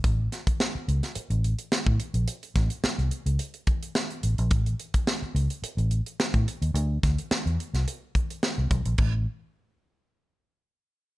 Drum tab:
CC |----------------|----------------|----------------|----------------|
HH |x-xx--xxxxxx--xx|xxxx-xxxxxxx-xxx|xxxx--xxxxxx-xxx|x-xx-xxxx-xx--xx|
SD |--o-o--o----o---|--o-o-------o---|----o-------o---|--o-o--o----o---|
BD |o--o---------o--|--o-------o-----|o--o---------o--|--o-------o---o-|

CC |x---------------|
HH |----------------|
SD |----------------|
BD |o---------------|